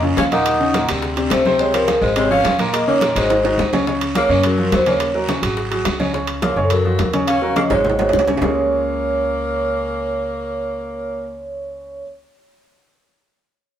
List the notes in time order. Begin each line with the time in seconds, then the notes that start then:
Already playing: F2
0.02 C#3 C#4 F4, high bongo, high conga
0.17 D#2 C#4 F5, high bongo, low bongo, high conga, high timbale, low timbale, short guiro
0.32 A#2 A#3 D#4 A#4 F#5, high bongo, high conga, high timbale, short guiro
0.46 high bongo, high timbale, long guiro
0.60 C#3 C#4 D#4, high conga
0.74 A#2 A#3 A#4, high bongo, high conga, high timbale, low timbale, short guiro
0.89 D2 C3 C4 D4, high bongo, high conga, high timbale, short guiro
1.02 high bongo, high conga, long guiro
1.17 C3 C4 D4, high bongo, high conga, high timbale
1.30 C#2 A3 C5, high bongo, low bongo, high conga, high timbale, low timbale, short guiro
1.45 C3 C4 C5, high bongo, high conga, short guiro
1.59 C3 G#3 C4 C5 C#5, high bongo, high conga, long guiro
1.74 F3 A#4, high bongo, high conga, high timbale
1.88 F3 F4 G#4, high bongo, high conga, high timbale, low timbale, short guiro
2.01 G#1 G#3 C5, high conga, short guiro
2.16 C3 G#3 C4 C5 C#5, high bongo, high conga, high timbale, long guiro
2.31 F3 C#4 F4 G#4 F5, high bongo, high conga
2.44 D#2, high bongo, low bongo, high conga, high timbale, low timbale, short guiro
2.59 A#2 A#3 A#4, high bongo, high conga, high timbale, short guiro
2.73 A#3 D#5, high bongo, high conga, high timbale, long guiro
2.87 C#3 A#3 C#4 D#4 C#5, high conga
3.01 A#2 A#3 A#4, high bongo, high conga, high timbale, low timbale, short guiro
3.16 G#1 D#3 G#3 D#4 F#4 C5, high bongo, high conga, high timbale, short guiro
3.30 high bongo, high conga, high timbale, long guiro
3.44 D#3 D#4 F#4, high bongo, high conga, high timbale
3.58 C#2, high bongo, low bongo, high conga, low timbale, short guiro
3.73 C#3 C#4 C#5, high bongo, high conga, low timbale, short guiro
3.87 C#3 C#4 C#5, high bongo, long guiro
4.01 high bongo, high conga, high timbale
4.15 F3 A#3 F4 G#4 C#5, high bongo, high conga, high timbale, low timbale, short guiro
4.29 F#2 C#3 C#4 C#5, high conga, short guiro
4.43 F#3 A#4, high bongo, high conga, high timbale, long guiro
4.58 F3 F4 F#4, high bongo, high conga
4.72 D#2 F#3 C5, high bongo, low bongo, high conga, high timbale, low timbale, short guiro
4.86 C#3 A#3 C#4 C#5, high bongo, high conga, high timbale, short guiro
5.00 high bongo, high timbale, long guiro
5.14 F#3 F#4 A#4, high conga
5.28 C#3 C#4 C#5, high bongo, high conga, high timbale, low timbale, short guiro
5.42 G#1 F#3 F#4 G#4, high bongo, high conga, high timbale, short guiro
5.57 high bongo, high conga, long guiro
5.71 F#3 F#4 G#4, high bongo, high conga, high timbale
5.85 C#2, high bongo, low bongo, high conga, high timbale, low timbale, short guiro
5.99 C#3 C#4 C#5, high bongo, high conga, short guiro
6.13 C#3 C#4 C#5, high bongo
6.27 high bongo, high conga, high timbale
6.42 F3 A#3 F4 G#4 C#5, high bongo, high conga, high timbale, low timbale
6.56 F#2 C#3 C#4 C#5, high conga
6.63 F3 A4
6.70 F#3 A#4, high bongo, high conga, high timbale
6.85 F3 F4 F#4, high bongo, high conga
6.99 D#2, high bongo, low bongo, high conga, high timbale, low timbale
7.13 C#3 C#4 C#5, high bongo, high conga, high timbale
7.27 C#4 F5, high bongo, high timbale
7.41 F#3 F#4 A#4, high conga
7.56 C#3 A#3 C#4 C#5 D#5, high bongo, high conga, high timbale, low timbale
7.70 G#1 F#3 G#3 F#4 G#4 C#5, high bongo, low conga, high timbale
7.84 low conga
7.90 high timbale
7.98 F#3 F#4 G#4, low bongo, low conga, high timbale
8.09 C#2, low timbale
8.13 low bongo, low conga
8.19 low timbale
8.27 C#3 C#4 C#5, low bongo, low conga, low timbale
8.37 C#2 C#3 G#3 C#4, low timbale
8.41 A#3 F4 G#4 C#5, low bongo, low conga, low timbale